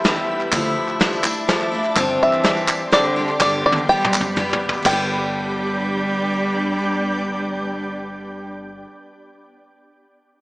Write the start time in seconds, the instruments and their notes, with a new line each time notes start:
Already playing: ambient pad G4 B4 E5 B5
0.04 steel-string acoustic guitar E3 G3 B3 E4, snare, closed hi-hat
0.17 clap
0.41 clap
0.52 upright bass D2, steel-string acoustic guitar D3 F3 A3 D4 E4, ambient pad F3 D5 A5, kick, clap, closed hi-hat, tambourine
0.65 clap
0.88 clap
1.00 steel-string acoustic guitar F3 A3 D4 E4, snare, clap, closed hi-hat
1.13 tambourine
1.23 steel-string acoustic guitar A3 D4 E4, clap, tambourine
1.48 steel-string acoustic guitar F3 A3 D4 E4, snare, closed hi-hat
1.61 clap
1.72 steel-string acoustic guitar A3 D4 E4
1.85 clap
1.96 upright bass G1, steel-string acoustic guitar G2 D3 G3 C4 D4 G4, ambient pad G4 C5 D5 C6, kick, clap, closed hi-hat, tambourine
2.09 clap
2.22 cello E3, five-string banjo E5
2.33 clap
2.44 steel-string acoustic guitar G3 C4 D4 G4, snare, clap, closed hi-hat
2.57 tambourine
2.68 clap, tambourine
2.92 cello D3, steel-string acoustic guitar G3 C4 D4 G4, five-string banjo D5, snare, closed hi-hat
3.05 clap
3.16 steel-string acoustic guitar G3 C4 D4 G4
3.29 clap
3.40 upright bass G1, steel-string acoustic guitar G2 D3 G3 B3 D4 G4, cello D3, ambient pad B4 B5, five-string banjo D5, kick, snare, clap, tambourine
3.65 cello D3, five-string banjo D5
3.72 high tom
3.77 clap
3.89 steel-string acoustic guitar G3 B3 D4 G4, cello G3, five-string banjo G5
4.02 clap, mid tom
4.12 steel-string acoustic guitar G3 B3 D4 G4, clap, tambourine
4.21 mid tom
4.36 steel-string acoustic guitar G3 B3 D4 G4, mid tom
4.50 clap, floor tom
4.69 floor tom
4.73 tambourine
4.82 upright bass G1, steel-string acoustic guitar G2 D3, cello G3, ambient pad B3 D4 G4 D5 G5, five-string banjo G5, kick, clap, crash, tambourine
4.87 steel-string acoustic guitar G3 B3 D4
4.93 steel-string acoustic guitar G4